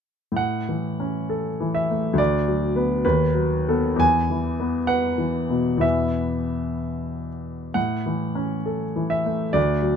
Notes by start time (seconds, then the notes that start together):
0.32 A2
0.36 F#5
0.69 E3
1.00 C#4
1.30 A4
1.60 E3
1.75 E5
1.90 A3
2.13 D2
2.18 D5
2.48 F#3
2.76 B3 B4
3.05 D#2 B4
3.34 F#3
3.69 B3 A4
3.96 E2 G#5
4.30 E3
4.60 B3
4.87 B4 F#5
5.18 E3
5.50 B2
5.77 E2 E3 B3 B4 E5
7.74 A2 F#5
8.06 E3
8.35 C#4
8.66 A4
8.96 E3
9.10 E5
9.26 A3
9.53 D2 D5
9.81 F#3